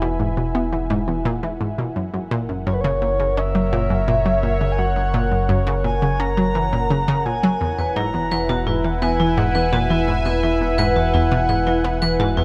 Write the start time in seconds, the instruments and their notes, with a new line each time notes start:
Already playing: analog synth bass E1, analog synth pad E4 E5 F#5 G#5 B5
0.02 synth arpeggio sound B2
0.20 synth arpeggio sound G#2
0.37 synth arpeggio sound B2
0.55 synth arpeggio sound B3
0.73 synth arpeggio sound E3
0.90 synth arpeggio sound G#2
1.08 synth arpeggio sound E2
1.25 synth arpeggio sound A#2
1.43 synth arpeggio sound E3
1.61 synth arpeggio sound G#2
1.78 synth arpeggio sound B2
1.96 analog synth bass F#1, synth arpeggio sound F#2, analog synth pad A#4
2.14 synth arpeggio sound F#2
2.31 synth arpeggio sound A#2
2.49 synth arpeggio sound F#2
2.62 analog synth pad C#5
2.67 synth arpeggio sound F#2, soft synth lead C#5
2.74 soft synth lead B4
2.81 synth arpeggio sound C#3, soft synth lead C#5
3.02 synth arpeggio sound A#2
3.20 synth arpeggio sound C#3
3.37 synth arpeggio sound C#4, soft synth lead E5
3.55 synth arpeggio sound F#3
3.73 synth arpeggio sound A#2
3.90 synth arpeggio sound F#2
4.08 synth arpeggio sound A#2
4.26 synth arpeggio sound F#3
4.43 synth arpeggio sound A#2
4.61 synth arpeggio sound C#3
4.72 soft synth lead G#5
4.78 synth arpeggio sound F#2, soft synth lead F#5
4.96 synth arpeggio sound F#2
5.14 synth arpeggio sound A#2
5.32 synth arpeggio sound F#2
5.49 synth arpeggio sound F#2
5.67 synth arpeggio sound C#3
5.84 synth arpeggio sound A#2, soft synth lead G#5
6.02 synth arpeggio sound C#3
6.20 synth arpeggio sound C#4, soft synth lead A#5
6.37 synth arpeggio sound F#3
6.55 synth arpeggio sound E3
6.73 synth arpeggio sound A#2
6.90 synth arpeggio sound C#3
7.08 synth arpeggio sound C#3
7.26 synth arpeggio sound A#2, soft synth lead G#5
7.43 synth arpeggio sound F#3
7.61 analog synth bass E1, synth arpeggio sound E2, analog synth pad E4
7.79 synth arpeggio sound E2, vibraphone B4
7.87 analog synth pad B4
7.96 synth arpeggio sound G#2, vibraphone E4, soft synth lead A#5
8.09 analog synth pad E5
8.14 synth arpeggio sound E2
8.32 synth arpeggio sound E2, vibraphone B4
8.36 analog synth pad G#5
8.49 synth arpeggio sound B2, vibraphone F#4
8.67 synth arpeggio sound G#2, vibraphone E4
8.84 synth arpeggio sound E3
9.02 synth arpeggio sound B3, vibraphone B4, soft synth lead G#5
9.20 synth arpeggio sound E3, vibraphone E4
9.37 synth arpeggio sound G#2, soft synth lead F#5
9.55 synth arpeggio sound E2, vibraphone B4
9.73 synth arpeggio sound A#2, vibraphone F#4
9.90 synth arpeggio sound E3, vibraphone E4
10.08 synth arpeggio sound G#2
10.25 synth arpeggio sound B2, vibraphone B4
10.43 synth arpeggio sound E2, vibraphone E4, soft synth lead E5
10.61 synth arpeggio sound E2
10.78 synth arpeggio sound G#2, vibraphone B4, soft synth lead F#5
10.96 synth arpeggio sound E2, vibraphone F#4
11.14 synth arpeggio sound E2, vibraphone E4
11.32 synth arpeggio sound B2
11.49 synth arpeggio sound G#2, vibraphone B4
11.67 synth arpeggio sound E3, vibraphone E4
11.84 synth arpeggio sound B3
12.02 synth arpeggio sound E3, vibraphone B4
12.20 synth arpeggio sound G#2, vibraphone F#4
12.37 synth arpeggio sound E2, vibraphone E4